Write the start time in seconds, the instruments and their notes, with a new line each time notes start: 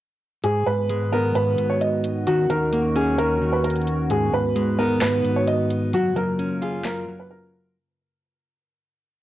0.44 clean electric guitar G#2, analog synth pad G#2 D#3 B3 F#4, grand piano G#4, closed hi-hat
0.66 clean electric guitar G#2, grand piano B4
0.89 clean electric guitar G#3, closed hi-hat
1.12 clean electric guitar B3, grand piano A#4
1.35 clean electric guitar G#2, grand piano B4, closed hi-hat
1.58 clean electric guitar G#2, closed hi-hat
1.70 grand piano C#5
1.81 grand piano D#5, closed hi-hat
2.04 closed hi-hat
2.27 analog synth pad D#2 C#4, clean electric guitar D#3, grand piano F#4, closed hi-hat
2.50 clean electric guitar D#3, grand piano A#4, closed hi-hat
2.73 clean electric guitar A#3, closed hi-hat
2.96 clean electric guitar C#4, grand piano G#4, closed hi-hat
3.18 clean electric guitar D#3, grand piano A#4, closed hi-hat
3.42 clean electric guitar D#3
3.52 grand piano B4
3.64 grand piano A#4, closed hi-hat
3.70 closed hi-hat
3.76 closed hi-hat
3.81 closed hi-hat
3.87 closed hi-hat
4.10 clean electric guitar G#2, analog synth pad G#2 B3, grand piano G#4, closed hi-hat
4.33 clean electric guitar G#2, grand piano B4
4.56 clean electric guitar G#3, closed hi-hat
4.79 clean electric guitar B3, grand piano A#4
5.01 clean electric guitar G#2, grand piano B4, snare, clap, closed hi-hat
5.24 clean electric guitar G#2, closed hi-hat
5.36 grand piano C#5
5.47 grand piano D#5, closed hi-hat
5.70 closed hi-hat
5.93 analog synth pad F#2 C#3 A#3 F4, clean electric guitar F#3, grand piano F#4, closed hi-hat
6.16 clean electric guitar F#3, grand piano A#4, closed hi-hat
6.39 clean electric guitar C#4, closed hi-hat
6.62 clean electric guitar F4, grand piano G#4, closed hi-hat
6.84 clean electric guitar F#3, grand piano A#4, snare, clap, closed hi-hat
7.08 clean electric guitar F#3
7.19 grand piano B4
7.31 grand piano A#4